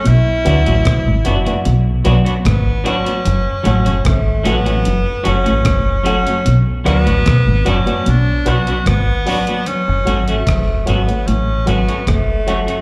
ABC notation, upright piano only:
X:1
M:4/4
L:1/16
Q:1/4=75
K:F#m
V:1 name="Upright piano"
z2 [FBdf] z3 [FBdf] [FBdf] z2 [FBdf] z3 [FBdf] z | z2 [FAcf] z3 [FAcf] [FAcf] z2 [FAcf] z3 [FAcf] z | z2 [FBdf] z3 [FBdf] [FBdf] z2 [FBdf] z3 [FBdf] z | z2 [FAcf] z3 [FAcf] [FAcf] z2 [FAcf] [cf] z2 [FAcf] z |]